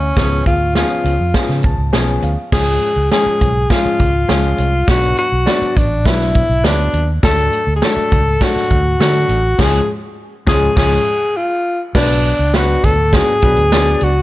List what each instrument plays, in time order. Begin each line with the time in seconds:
Already playing: fingered electric bass D2, tenor saxophone C#4
0.17 fingered electric bass C#2, grand piano F3 B3 C#4 G#4, kick, snare, closed hi-hat
0.46 fingered electric bass D2, tenor saxophone F4, kick, closed hi-hat
0.75 grand piano F3 B3 C#4 G#4, tenor saxophone F4, snare, closed hi-hat
1.04 fingered electric bass C#2, closed hi-hat
1.20 fingered electric bass F2
1.34 grand piano F3 B3 C#4 G#4, kick, snare, closed hi-hat
1.49 fingered electric bass C#3, snare
1.63 fingered electric bass C#2, grand piano A5, kick, closed hi-hat
1.78 fingered electric bass C#2
1.93 fingered electric bass B1, grand piano F3 B3 C#4 G#4 G#5, snare, closed hi-hat
2.22 fingered electric bass D2, grand piano F5, closed hi-hat
2.52 fingered electric bass C#2, grand piano F3 G#3 C#4 G#4, tenor saxophone G#4, kick, snare, crash
2.82 closed hi-hat
2.96 fingered electric bass C#2
3.12 grand piano F3 G#3 C#4 G#4, tenor saxophone G#4, snare, closed hi-hat
3.26 muted fingered electric bass stroke
3.41 fingered electric bass B1, kick, closed hi-hat
3.70 grand piano F3 G#3 C#4 G#4, tenor saxophone F4, kick, snare, closed hi-hat
3.85 muted fingered electric bass stroke
3.99 fingered electric bass C#2, kick, closed hi-hat
4.28 fingered electric bass C#2, grand piano F3 G#3 C#4 G#4, tenor saxophone F4, snare, closed hi-hat
4.58 fingered electric bass C2, closed hi-hat
4.87 fingered electric bass B1, grand piano F#3 B3 D4 B4, tenor saxophone F#4, kick, snare, closed hi-hat
5.17 tenor saxophone F#4, closed hi-hat
5.32 fingered electric bass B1
5.46 grand piano F#3 B3 D4 D5, snare, closed hi-hat
5.62 muted fingered electric bass stroke
5.77 fingered electric bass A1, tenor saxophone D4, kick, closed hi-hat
6.05 fingered electric bass B1, grand piano F#3 B3 D4 B4, tenor saxophone E4, kick, snare, closed hi-hat
6.21 snare
6.34 kick, closed hi-hat
6.49 fingered electric bass B1
6.63 fingered electric bass D2, grand piano F#3 B3 D4 B4, tenor saxophone D4, snare, closed hi-hat
6.93 fingered electric bass D#2, closed hi-hat
7.23 fingered electric bass D2, grand piano F#3 A3 D4 A4, tenor saxophone A4, kick, snare, closed hi-hat
7.53 closed hi-hat
7.67 fingered electric bass D2
7.76 tenor saxophone G#4
7.82 grand piano F#3 A3 D4 A4, tenor saxophone A4, snare, closed hi-hat
7.96 muted fingered electric bass stroke
8.12 fingered electric bass C#2, kick, closed hi-hat
8.41 grand piano F#3 A3 D4 A4, tenor saxophone F#4, kick, snare, closed hi-hat
8.56 muted fingered electric bass stroke, snare
8.70 fingered electric bass D2, kick, closed hi-hat
9.00 fingered electric bass D3, grand piano F#3 A3 D4 A4, tenor saxophone F#4, snare, closed hi-hat
9.29 fingered electric bass A1, closed hi-hat
9.58 fingered electric bass C#2, grand piano F3 G#3 C#4 G#4, tenor saxophone G#4, kick, snare, crash
10.47 fingered electric bass C#2, grand piano F3 G#3 C#4 G#4, tenor saxophone G#4, kick, snare
10.76 fingered electric bass C#2, grand piano F3 G#3 C#4 G#4, tenor saxophone G#4, kick, snare, crash
11.37 tenor saxophone F4
11.95 fingered electric bass B1, grand piano F#3 B3 D4 B4, tenor saxophone D4, kick, snare, crash
12.10 closed hi-hat
12.25 closed hi-hat
12.39 fingered electric bass C#2
12.54 grand piano F#3 B3 D4 B4, tenor saxophone F#4, snare, closed hi-hat
12.84 fingered electric bass D2, tenor saxophone A4, kick, closed hi-hat
13.13 grand piano F#3 B3 D4 F#4, tenor saxophone G#4, kick, snare, closed hi-hat
13.42 fingered electric bass B1, grand piano F#3 B3 D4 B4, kick, closed hi-hat
13.57 fingered electric bass D2, closed hi-hat
13.72 grand piano F#3 B3 D4 D5, snare, closed hi-hat
14.01 fingered electric bass C#2, tenor saxophone F#4, closed hi-hat